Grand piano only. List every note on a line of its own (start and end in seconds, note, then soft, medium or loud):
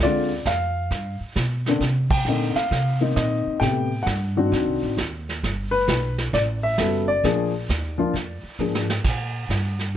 0.03 0.29 D3 medium
0.03 0.29 G#3 medium
0.03 0.29 C4 medium
0.03 0.29 F4 medium
0.03 0.48 D5 medium
0.47 1.17 F5 loud
1.68 1.81 D3 medium
1.68 1.81 A#3 medium
1.68 1.81 C4 medium
1.68 1.81 D4 medium
2.11 2.57 G5 loud
2.28 2.54 D3 medium
2.28 2.54 A#3 medium
2.28 2.55 C4 medium
2.28 2.54 D#4 medium
2.56 2.98 F5 medium
3.01 3.59 D#3 medium
3.01 3.59 A#3 medium
3.01 3.59 C4 medium
3.01 3.59 D#4 medium
3.16 3.63 D#5 medium
3.60 3.89 C3 medium
3.60 3.89 A3 medium
3.60 3.89 B3 medium
3.60 3.89 G4 medium
3.60 4.08 G5 loud
4.03 4.76 F#5 medium
4.37 4.95 D#3 medium
4.37 4.95 C4 medium
4.37 4.95 D4 medium
4.37 4.95 F#4 medium
5.71 6.14 B4 loud
6.34 6.40 D5 loud
6.63 7.05 E5 loud
6.79 7.05 G3 medium
6.79 7.05 B3 medium
6.79 7.06 F#4 soft
6.79 7.06 A4 medium
7.08 8.55 D5 loud
7.25 7.51 F3 medium
7.25 7.51 A#3 medium
7.25 7.51 D4 medium
7.25 7.51 G#4 medium
7.98 8.12 F3 medium
7.98 8.13 A#3 medium
7.98 8.13 D4 medium
7.98 8.13 F4 medium
8.59 8.86 F3 medium
8.59 8.86 A#3 medium
8.59 8.87 D4 medium
8.59 8.87 G#4 medium